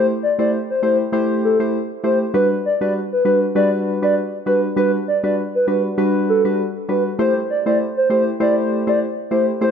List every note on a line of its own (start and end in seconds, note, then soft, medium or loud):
0.00 0.12 A3 loud
0.00 0.12 E4 medium
0.00 0.12 G4 medium
0.00 0.12 C5 loud
0.23 0.37 D5 medium
0.39 0.57 A3 medium
0.39 0.57 E4 medium
0.39 0.57 G4 medium
0.39 0.57 C5 medium
0.39 0.51 D5 medium
0.70 0.81 C5 medium
0.82 1.03 A3 medium
0.82 1.03 E4 medium
0.82 1.03 G4 medium
0.82 1.03 C5 medium
0.82 0.97 C5 medium
1.12 1.56 A3 medium
1.12 1.56 E4 medium
1.12 1.56 G4 medium
1.12 1.56 C5 loud
1.44 1.58 A4 medium
1.60 1.78 A3 medium
1.60 1.78 E4 medium
1.60 1.78 G4 medium
1.60 1.78 C5 medium
2.04 2.24 A3 medium
2.04 2.24 E4 medium
2.04 2.24 G4 medium
2.04 2.24 C5 medium
2.04 2.19 C5 medium
2.34 2.54 G3 medium
2.34 2.54 D4 medium
2.34 2.54 F#4 medium
2.34 2.55 B4 loud
2.34 2.49 B4 loud
2.66 2.79 D5 medium
2.81 2.99 G3 medium
2.81 2.99 D4 medium
2.81 2.99 F#4 medium
2.81 2.99 B4 medium
2.81 2.93 D5 medium
3.13 3.24 B4 medium
3.25 3.45 G3 medium
3.25 3.45 D4 medium
3.25 3.45 F#4 medium
3.25 3.46 B4 medium
3.25 3.40 B4 medium
3.55 3.98 G3 loud
3.55 3.98 D4 medium
3.55 3.99 F#4 medium
3.55 3.99 B4 loud
3.55 3.70 D5 medium
4.02 4.20 G3 medium
4.02 4.20 D4 medium
4.02 4.20 F#4 medium
4.02 4.21 B4 medium
4.02 4.15 D5 medium
4.46 4.67 G3 medium
4.46 4.67 D4 medium
4.46 4.67 F#4 medium
4.46 4.67 B4 medium
4.46 4.61 B4 medium
4.76 4.97 G3 loud
4.76 4.97 D4 medium
4.76 4.97 F#4 medium
4.76 4.97 B4 loud
4.76 4.92 B4 loud
5.08 5.22 D5 medium
5.23 5.42 G3 medium
5.23 5.42 D4 medium
5.23 5.42 F#4 medium
5.23 5.42 B4 medium
5.23 5.36 D5 medium
5.55 5.66 B4 medium
5.67 5.88 G3 medium
5.67 5.88 D4 medium
5.67 5.88 F#4 medium
5.67 5.88 B4 medium
5.67 5.82 B4 medium
5.98 6.41 G3 medium
5.98 6.41 D4 medium
5.98 6.41 F#4 medium
5.98 6.41 B4 loud
6.29 6.43 A4 medium
6.45 6.63 G3 medium
6.45 6.63 D4 medium
6.45 6.63 F#4 medium
6.45 6.63 B4 medium
6.89 7.09 G3 medium
6.89 7.09 D4 medium
6.89 7.09 F#4 medium
6.89 7.09 B4 medium
6.89 7.04 B4 medium
7.19 7.39 A3 medium
7.19 7.39 E4 medium
7.19 7.39 G4 medium
7.19 7.39 C5 loud
7.19 7.34 C5 loud
7.50 7.64 D5 medium
7.66 7.84 A3 medium
7.66 7.84 E4 medium
7.66 7.84 G4 medium
7.66 7.84 C5 medium
7.66 7.78 D5 medium
7.97 8.08 C5 medium
8.10 8.30 A3 medium
8.10 8.30 E4 medium
8.10 8.30 G4 medium
8.10 8.30 C5 medium
8.10 8.25 C5 medium
8.40 8.83 A3 loud
8.40 8.83 E4 medium
8.40 8.83 G4 medium
8.40 8.83 C5 loud
8.40 8.55 D5 medium
8.87 9.05 A3 medium
8.87 9.05 E4 medium
8.87 9.05 G4 medium
8.87 9.05 C5 medium
8.87 8.99 D5 medium
9.31 9.51 A3 medium
9.31 9.51 E4 medium
9.31 9.51 G4 medium
9.31 9.52 C5 medium
9.31 9.46 C5 medium
9.61 9.71 A3 loud
9.61 9.71 E4 medium
9.61 9.71 G4 medium
9.61 9.71 C5 loud